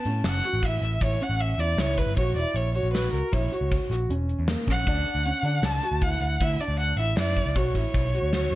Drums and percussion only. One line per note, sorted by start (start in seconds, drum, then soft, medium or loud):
0.05 closed hi-hat soft
0.24 snare medium
0.24 closed hi-hat medium
0.44 closed hi-hat medium
0.63 kick loud
0.63 closed hi-hat medium
0.82 closed hi-hat medium
1.01 kick medium
1.01 closed hi-hat medium
1.21 closed hi-hat soft
1.40 closed hi-hat medium
1.59 closed hi-hat soft
1.78 snare medium
1.78 closed hi-hat medium
1.98 kick medium
1.98 closed hi-hat medium
2.17 kick medium
2.17 closed hi-hat medium
2.36 closed hi-hat medium
2.56 closed hi-hat medium
2.75 closed hi-hat medium
2.95 snare medium
2.95 closed hi-hat medium
3.15 closed hi-hat medium
3.33 kick loud
3.33 closed hi-hat medium
3.53 closed hi-hat medium
3.72 kick medium
3.72 closed hi-hat medium
3.91 snare soft
3.91 closed hi-hat medium
4.10 closed hi-hat medium
4.29 closed hi-hat soft
4.48 snare medium
4.48 closed hi-hat medium
4.68 kick medium
4.68 closed hi-hat soft
4.87 kick medium
4.87 closed hi-hat medium
5.06 closed hi-hat soft
5.25 closed hi-hat medium
5.45 closed hi-hat medium
5.63 snare medium
5.63 closed hi-hat medium
5.83 closed hi-hat medium
6.01 kick loud
6.01 closed hi-hat medium
6.21 closed hi-hat medium
6.40 kick medium
6.40 closed hi-hat medium
6.60 closed hi-hat medium
6.79 closed hi-hat medium
6.98 closed hi-hat soft
7.17 snare medium
7.17 closed hi-hat medium
7.36 kick medium
7.36 closed hi-hat medium
7.55 kick loud
7.55 closed hi-hat medium
7.75 kick medium
7.75 closed hi-hat medium
7.94 kick medium
7.94 closed hi-hat medium
8.14 closed hi-hat soft
8.33 snare medium
8.33 closed hi-hat medium